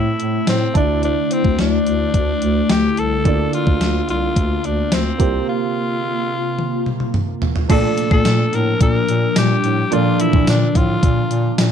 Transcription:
Already playing: A2 C3 A3 C4 E4 C5 E5
0.19 A2, closed hi-hat
0.47 A2 C4 C5, snare, closed hi-hat
0.74 D2 D3 A3 D4 E4 D5, kick, closed hi-hat
1.03 D4 D5, closed hi-hat
1.31 C4 C5, closed hi-hat
1.44 D2, kick
1.58 D2 D4 D5, snare, closed hi-hat
1.86 D2, closed hi-hat
2.14 D2, kick, closed hi-hat
2.42 D2, closed hi-hat
2.70 D2 G4 G5, snare, closed hi-hat
2.97 C2 A4 A5, closed hi-hat
3.24 D2 D3 A#3 D4 F4 D5, kick, closed hi-hat
3.53 F4 F5, closed hi-hat
3.67 D2, kick
3.81 D2, snare, closed hi-hat
4.09 C2 F4 F5, closed hi-hat
4.36 D2, kick, closed hi-hat
4.64 D2 D4 D5, closed hi-hat
4.92 D2 C4 C5, snare, closed hi-hat
5.18 C2 C3 A#3 F4 G4 C5, kick, closed hi-hat
5.48 F4 F5
6.59 high tom
6.86 mid tom
7.00 mid tom
7.14 mid tom
7.42 floor tom
7.56 floor tom
7.68 A#2 F3 A3 D4 F4 A4 D5 A5, kick, closed hi-hat, crash
7.98 closed hi-hat
8.11 A#2 A3 A4, kick
8.25 A#2, snare, closed hi-hat, tambourine
8.53 A2 A#3 A#4, closed hi-hat
8.80 A#2 A#3 A#4, kick, closed hi-hat
9.08 A#2, closed hi-hat
9.36 A#2 G3 G4, snare, closed hi-hat, tambourine
9.64 A2, closed hi-hat
9.91 A#2 F3 A#3 D4 F4 A4 D5, closed hi-hat
10.19 E3 E4, closed hi-hat
10.33 A#2, kick
10.47 A#2 D3 D4, snare, closed hi-hat, tambourine
10.75 A2 F3 F4, kick, closed hi-hat
11.03 A#2, kick, closed hi-hat
11.31 A#2, closed hi-hat
11.58 A#2, snare, closed hi-hat, tambourine

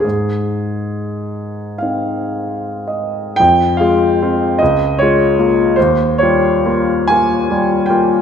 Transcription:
0.00 G#4
0.04 G#2
1.78 C4 D#4 F5
2.87 D#5
3.36 F2 G5
3.77 G#3 F4 F5
4.22 C4 F4
4.59 C#2 D#5
4.99 G#3 F4 C#5
5.39 A#3 F4
5.76 D#2 C5
6.18 G3 F4 C#5
6.66 A#3 F4
7.08 A#3 F4 G#5
7.50 G3 F4
7.86 A#3 G5
7.90 F4

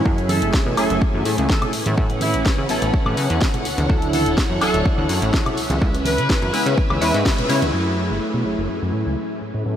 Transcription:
Already playing: E4
0.05 F#2 F#3 A3 C#4 E4 G#4 G#5, kick
0.18 closed hi-hat
0.29 A4, open hi-hat, tambourine, high conga
0.41 F#1, closed hi-hat, tambourine
0.53 kick, snare
0.66 B2, tambourine, high conga
0.77 F#1 F#3 A3 C#4 E4 G#4 A4, open hi-hat, tambourine, high woodblock
0.90 F#1, closed hi-hat
1.01 kick, tambourine
1.14 F#2, high conga
1.25 A2, open hi-hat, tambourine
1.38 C#2, closed hi-hat, tambourine
1.50 A4, kick, snare, tambourine, high conga
1.62 closed hi-hat, low conga, high woodblock
1.73 A2 C#4 B4 F#5, open hi-hat, tambourine
1.86 A2, closed hi-hat, tambourine, high conga
1.97 F#3 B3 C#4 E4 A4, kick, tambourine
2.10 closed hi-hat
2.21 E4, open hi-hat, tambourine, high conga
2.34 A1, closed hi-hat, tambourine
2.45 kick, snare, tambourine
2.57 C#3, tambourine, high conga
2.69 A1 F#3 B3 C#4 E4 A4, open hi-hat, tambourine
2.82 A1, closed hi-hat, tambourine
2.94 kick, tambourine
3.06 A2, high conga, high woodblock
3.17 C#3, open hi-hat, tambourine
3.30 E2, closed hi-hat, tambourine
3.41 kick, snare, open hi-hat, tambourine, high conga
3.54 closed hi-hat, low conga
3.65 D2 E4 C#5, open hi-hat, tambourine
3.78 D2, closed hi-hat, tambourine, high conga
3.89 D2 F#3 C#4 D4 E4 A4, kick, tambourine
4.02 closed hi-hat
4.13 A4, open hi-hat, tambourine, high conga
4.25 D1, closed hi-hat, tambourine
4.37 kick, snare, tambourine
4.50 F#2, tambourine, high conga
4.61 D1 F#3 C#4 D4 E4 A4, open hi-hat, tambourine, high woodblock
4.74 D1, closed hi-hat, tambourine
4.85 kick, tambourine
4.98 D2, high conga
5.09 F#2, open hi-hat, tambourine
5.21 A1, closed hi-hat, tambourine
5.34 kick, snare, tambourine, high conga
5.46 closed hi-hat, low conga, high woodblock
5.57 C#2 C#4 B4 E5, open hi-hat, tambourine
5.70 C#2, closed hi-hat, tambourine, high conga
5.81 G#3 B3 C#4 E4 B4, kick, tambourine
5.94 closed hi-hat, tambourine
6.05 B4, open hi-hat, tambourine, high conga
6.18 C#3, closed hi-hat, tambourine
6.30 kick, snare
6.42 F#2, closed hi-hat, tambourine, high conga
6.53 C#3 G#3 B3 C#4 E4 B4, open hi-hat, tambourine
6.66 C#3, closed hi-hat, tambourine
6.78 kick
6.90 C#2, high conga, high woodblock
7.01 E2 G#3 B3 C#4 E4 B4, open hi-hat, tambourine
7.14 G#2, snare, closed hi-hat, tambourine
7.25 kick, snare, open hi-hat, tambourine, high conga
7.38 closed hi-hat, tambourine, low conga
7.49 C#3 G#3 B3 C#4 E4 C#5, open hi-hat, tambourine
7.62 C#2, closed hi-hat, tambourine, high conga
7.72 F#2 F#3 A3 C#4 E4 G#4 G#5
8.10 F#1
8.34 B2
8.44 F#1 F#3 A3 C#4 E4 G#4
8.58 F#1
8.70 F#2
8.82 F#2
8.94 A2
9.07 C#2
9.41 A2 C#4 B4 F#5
9.54 A2
9.65 A2 F#3 B3 C#4 E4 A4

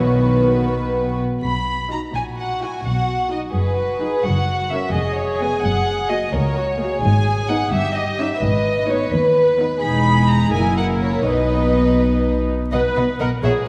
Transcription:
Already playing: F#4 B4
0.00 B1 B2 D#3 B3 B4
1.43 B1 B2 B5
1.91 D#4 F#4 A#5
2.14 A#1 A#2 F#4 G#5
2.38 F#5
2.62 E4 F#4 G#5
2.84 B1 B2 F#5
3.31 D#4 F#4 D#5
3.54 F#1 F#2 G#4 B4
3.77 F#4
4.01 D#4 F#4 G#4
4.25 F#1 F#2 F#4 F#5
4.71 C#4 A#4 E5
4.94 F1 F2 G#4 D#5
5.17 C#5
5.41 B3 G#4 G#5
5.63 F#1 F#2 F#5
6.10 A#3 F#4 D#5
6.33 C#2 A#4 C#5
6.57 F#4
6.80 A#3 F#4 G#4
7.03 G#1 G#2 G#5
7.50 B3 D#4 F#5
7.72 G1 G2 G4 E5
7.96 D#5
8.20 C#4 D#4 E5
8.34 E5
8.42 G#1 G#2 B4 D#5
8.89 B3 D#4 C#5
9.12 D#2 B4
9.59 B3 D#4
9.82 E1 E2 G#3 D#4 G#4 B5
10.29 A#5
10.53 F#1 F#2 A#3 E4 A#4 G#5
10.78 F#5
11.02 C#5
11.26 B1 B2 B3 D#4 B4 D#5
12.72 B1 B2 B4 D#5 F#5
12.96 B1 B2 B4 D#5 F#5
13.20 B1 B2 A#4 B4 D#5 F#5
13.43 A#1 A#2 G#4 C#5 E5 F#5

